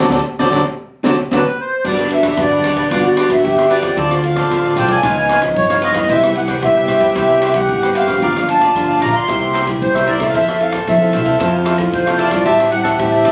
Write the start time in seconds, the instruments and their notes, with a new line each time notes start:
0.08 upright bass D2, trombone F#3, nylon-string guitar A3 C4 D4, cavaquinho A4 C5 D5, kick, snare
0.39 upright bass D2, trombone F#3, nylon-string guitar A3 C4 D4, cavaquinho A4 C5 D5, kick, snare
0.50 upright bass D2, trombone F#3, nylon-string guitar A3 C4 D4, cavaquinho A4 C5 D5, kick, snare
1.03 upright bass D2, trombone F#3, nylon-string guitar A3 C4 D4, cavaquinho A4 C5 D5, kick, snare
1.31 upright bass D2, trombone F#3, nylon-string guitar A3 C4 D4, cavaquinho A4 C5 D5, accordion B4, kick, snare
1.60 accordion C5
1.84 upright bass G1, nylon-string guitar G3 D4 F#4 B4, cavaquinho D4 G4 B4 F#5, trombone D4, accordion D5, kick, crash
1.99 cavaquinho G4 B4 F#5, cross-stick
2.11 nylon-string guitar D4 F#4 B4, accordion E5, muted cavaquinho stroke, ride
2.23 cavaquinho G4 B4 F#5, kick, cross-stick, ride
2.37 upright bass G2, nylon-string guitar D3 D4 F#4 B4, kick, cross-stick, ride
2.41 accordion D5
2.51 cavaquinho G4 B4 F#5
2.64 upright bass D2, cavaquinho D4 G4 B4 F#5, cross-stick, ride
2.76 cavaquinho G4 B4 F#5, kick, ride
2.91 upright bass G1, nylon-string guitar G3 D4 F#4 B4, cavaquinho D4 G4 B4 F#5, trombone F#4, accordion D5, kick, cross-stick, ride
3.05 cavaquinho G4 B4 F#5
3.17 cavaquinho D4 G4 B4 F#5, cross-stick, ride
3.28 nylon-string guitar D4 F#4 B4, accordion E5, muted cavaquinho stroke, kick, cross-stick, ride
3.44 upright bass G1, nylon-string guitar D3, trombone G4, kick, ride
3.58 cavaquinho G4 B4 F#5, cross-stick
3.69 nylon-string guitar D4 F#4 B4, cavaquinho D4 G4 B4 F#5, accordion D5, ride
3.82 nylon-string guitar C4 F4 A4, cavaquinho G4 F#5, kick, cross-stick, ride
3.96 upright bass D2, nylon-string guitar D3, trombone F4, cavaquinho F4 A4 C5 D5, kick, ride
4.11 cavaquinho A4 C5 D5, cross-stick
4.23 nylon-string guitar C4 F4 A4, accordion F5, muted cavaquinho stroke, ride
4.36 cavaquinho A4 C5 D5, kick, cross-stick, ride
4.50 nylon-string guitar A2 C4 F4 A4, upright bass D3, kick, cross-stick, ride
4.65 cavaquinho A4 C5 D5
4.76 upright bass C2, cavaquinho F4 A4 C5 D5, accordion G5, cross-stick, ride
4.88 cavaquinho A4 C5 D5, accordion G#5, kick, ride
5.03 upright bass C#2, nylon-string guitar C#3 F3 B3 D#4, trombone D#4, cavaquinho F4 B4 C#5 F5, kick, cross-stick, ride
5.18 cavaquinho B4 C#5 F5
5.29 cavaquinho F4 B4 C#5 F5, cross-stick, ride
5.41 nylon-string guitar F3 B3 D#4, muted cavaquinho stroke, kick, cross-stick, ride
5.56 upright bass G2, accordion C#5, kick, ride
5.70 cavaquinho B4 C#5 F5, cross-stick
5.82 nylon-string guitar F3 B3 D#4, cavaquinho F4 B4 C#5 F5, accordion D#5, ride
5.94 nylon-string guitar G3 B3 E4, cavaquinho B4 C#5 F5, kick, cross-stick, ride
6.09 upright bass C2, nylon-string guitar C3, cavaquinho E4 B4 C5 G5, trombone G4, accordion E5, kick, ride
6.23 nylon-string guitar G3 B3 E4, cavaquinho B4 C5 G5, cross-stick
6.36 nylon-string guitar G3 B3 E4, accordion F#5, muted cavaquinho stroke, ride
6.48 cavaquinho B4 C5 G5, kick, cross-stick, ride
6.63 nylon-string guitar G2 G3 B3 E4, upright bass C3, accordion E5, kick, cross-stick, ride
6.77 cavaquinho B4 C5 G5
6.88 upright bass G2, cavaquinho E4 B4 C5 G5, cross-stick, ride
7.00 cavaquinho B4 C5 G5, kick, ride
7.15 upright bass C2, nylon-string guitar C3 G3 B3 E4, cavaquinho E4 B4 C5 G5, accordion E5, kick, cross-stick, ride
7.29 cavaquinho B4 C5 G5
7.41 cavaquinho E4 B4 C5 G5, cross-stick, ride
7.54 nylon-string guitar G3 B3 E4, accordion F#5, muted cavaquinho stroke, kick, cross-stick, ride
7.69 upright bass G#1, nylon-string guitar G2, kick, ride
7.82 cavaquinho B4 C5 G5, cross-stick
7.94 cavaquinho E4 B4 C5 G5, accordion F5, ride
8.07 nylon-string guitar F3 A#3 D4, cavaquinho B4 C5 G5, kick, cross-stick, ride
8.22 upright bass G1, nylon-string guitar G2, trombone F4, cavaquinho G4 A#4 D5 F5, kick, ride
8.36 nylon-string guitar F3 A#3 D4, cavaquinho A#4 D5 F5, cross-stick
8.48 nylon-string guitar F3 A#3 D4, accordion A5, muted cavaquinho stroke, ride
8.60 cavaquinho A#4 D5 F5, kick, cross-stick, ride
8.75 upright bass G2, nylon-string guitar D3 F3 A#3 D4, kick, cross-stick, ride
8.88 cavaquinho A#4 D5 F5
9.00 upright bass A#1, cavaquinho G4 A#4 D5 F5, accordion A#5, cross-stick, ride
9.12 cavaquinho A#4 D5 F5, accordion C6, kick, ride
9.27 upright bass C2, nylon-string guitar C3 G3 A#3 E4, cavaquinho E4 A#4 C5 E5, trombone G4, kick, cross-stick, ride
9.41 cavaquinho A#4 C5 E5
9.53 cavaquinho E4 A#4 C5 E5, cross-stick, ride
9.66 nylon-string guitar G3 A#3 E4, muted cavaquinho stroke, kick, cross-stick, ride
9.82 upright bass C2, nylon-string guitar G2, accordion C5, kick, ride
9.95 cavaquinho A#4 C5 E5, cross-stick
10.06 nylon-string guitar G3 A#3 E4, cavaquinho E4 A#4 C5 E5, accordion D5, ride
10.19 nylon-string guitar C4 E4 A4, cavaquinho A#4 C5 E5, kick, cross-stick, ride
10.29 accordion F5
10.34 upright bass F2, nylon-string guitar F3, cavaquinho E4 A4 C5 F5, trombone A4, accordion E5, kick, ride
10.48 cavaquinho A4 C5 F5, cross-stick
10.59 nylon-string guitar C4 E4 A4, accordion F5, muted cavaquinho stroke, ride
10.71 cavaquinho A4 C5 F5, kick, cross-stick, ride
10.87 nylon-string guitar C3 C4 E4 A4, upright bass F3, accordion E5, kick, cross-stick, ride
11.01 nylon-string guitar C4 E4 A4, cavaquinho A4 C5 F5
11.12 upright bass C2, cavaquinho E4 A4 C5 F5, cross-stick, ride
11.25 nylon-string guitar C4 E4 A4, cavaquinho A4 C5 F5, kick, ride
11.39 upright bass F2, nylon-string guitar F3 C4 A4, cavaquinho E4 A4 C5 F5, trombone F4, kick, cross-stick, ride
11.53 cavaquinho A4 C5 F5
11.65 cavaquinho E4 A4 C5 F5, cross-stick, ride
11.77 nylon-string guitar C4 E4 A4, muted cavaquinho stroke, kick, cross-stick, ride
11.93 upright bass F2, nylon-string guitar C3, accordion C5, kick, ride
12.06 nylon-string guitar C4 E4 A4, cavaquinho A4 C5 F5, cross-stick
12.18 cavaquinho E4 A4 C5 F5, accordion D5, ride
12.30 nylon-string guitar G3 C4 E4, cavaquinho A4 C5 F5, kick, cross-stick, ride
12.45 upright bass A1, nylon-string guitar A2, cavaquinho G4 C5 E5 A5, trombone G4, accordion E5, kick, ride
12.59 cavaquinho C5 E5 A5, cross-stick
12.71 nylon-string guitar G3 C4 E4, accordion F#5, muted cavaquinho stroke, ride
12.84 cavaquinho C5 E5 A5, kick, cross-stick, ride
12.98 upright bass A2, nylon-string guitar E3 G3 C4 E4, trombone G4, accordion E5, kick, cross-stick, ride
13.12 cavaquinho C5 E5 A5
13.24 upright bass C2, cavaquinho G4 C5 E5 A5, cross-stick, ride